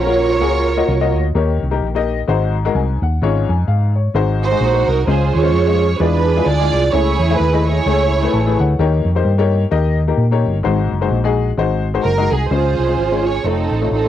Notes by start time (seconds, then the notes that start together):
Already playing: A#1 C#4 F4 A#4 C#5
0.06 A#3 F4 F#4 C#5
0.41 C#2 A#3 F4 F#4 G#4
0.77 A#3 F4 F#4 D#5
0.88 C2
1.00 A#3 F4 F#4 D#5
1.15 D2
1.35 D#2 D#3 A#3 D#4 G4 C#5
1.62 C2
1.71 A#3 D#4 G4 A#4
1.81 A#1
1.95 A#3 D#4 G4 D#5
2.28 G#1 G#2 G#3 D#4 F#4 C5
2.65 G#3 D#4 F#4 A#4
2.75 C2 G#5
3.02 D#2 F#5
3.22 G#1 G#2 G#3 C#4 F4 C#5
3.49 F2 G#5
3.68 G#2 F5
3.96 C#5
4.14 G#1 G#2 G#3 D#4 F#4 C5
4.43 D#4 F#4 C5
4.51 G#3 D#4 F#4 G#4
4.60 A#1
4.74 G#3 D#4 F#4 C5
4.88 C2 A#4
5.07 C#2 C#3 G#3 C#4 F4 G#4 C5
5.34 D#2 F4 G#4 C#5
5.43 G#3 C#4 F4 C5
5.54 F2
5.66 G#3 C#4 F4 C#5
6.00 E2 E3 G#3 D4 E4 F4 G#4 B4 D5
6.36 G#3 E4 F4 G#4
6.46 D2 F4 G#4 D5
6.60 G#3 E4 F4 D5
6.73 C2
6.92 C#2 C#3 A3 E4 G#4 C#5
7.19 E2
7.29 A3 E4 G#4 E5
7.37 D#2 B4
7.53 A3 E4 G#4 D#5
7.65 E4 G#4 C#5
7.86 C#2 A3 E4 G#4 C#5
8.22 A3 E4 G#4 B4
8.33 A1 A5
8.46 A3 E4 G#4 B4
8.60 D2 F#5
8.79 D#2 D#3 A#3 D#4 G4 C#5
9.05 F2
9.15 A#3 D#4 G4 C5
9.25 G2
9.38 A#3 D#4 G4 C#5
9.71 D#2 A#3 D#4 G4 D#5
10.08 A#3 D#4 G4 A#4
10.17 A#2
10.31 A#3 D#4 G4 C#5
10.45 G1
10.63 G#1 G#2 G#3 D#4 F#4 C5
10.91 F#1
11.01 G#3 D#4 F#4 C5
11.11 A#1
11.24 G#3 D#4 F#4 G#4
11.57 G#1 G#3 D#4 F#4 C5
11.94 G#3 D#4 F#4 C5
12.03 F#1 A#4
12.17 G#3 D#4 F#4 D#5
12.31 C2 G#4
12.50 C#2 C#3 G#3 C#4 F4 G#4 C5
12.78 C2
12.87 G#3 C#4 F4 G#4
12.98 G#1
13.11 G#3 C#4 F4 C#5
13.26 C#5
13.44 F1 A3 C4 D#4 F4 A4 C#5
13.71 A1
13.81 A3 D#4 F4 C#5
13.91 A1 C4 D#4 A4
14.04 A3 D#4 F4 C#5